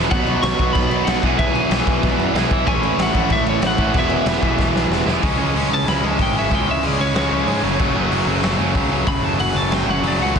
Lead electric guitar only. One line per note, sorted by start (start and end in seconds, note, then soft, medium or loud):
0.11 0.44 F#5 medium
0.43 0.73 C#6 loud
0.73 1.07 B5 medium
1.05 1.39 F#5 medium
1.39 1.54 E5 medium
1.54 2.15 G#5 medium
2.68 3.00 G#5 loud
3.03 3.34 F#5 loud
3.32 3.48 E5 loud
3.49 3.65 C#5 medium
3.67 3.98 F#5 medium
3.99 4.89 E5 medium
5.74 5.88 A5 loud
5.89 6.06 B5 medium
6.06 6.20 A5 medium
6.22 6.36 G5 medium
6.39 6.55 E5 medium
6.55 6.68 G5 medium
6.71 6.86 E5 medium
6.86 7.00 D5 medium
7.01 7.16 C#5 medium
7.18 8.10 C#5 medium
9.08 9.24 B5 medium
9.24 9.40 A5 medium
9.40 9.56 F#5 medium
9.56 9.74 A5 medium
9.74 9.89 G5 medium
9.90 10.05 F#5 medium
10.08 10.21 D5 medium
10.22 10.38 F#5 medium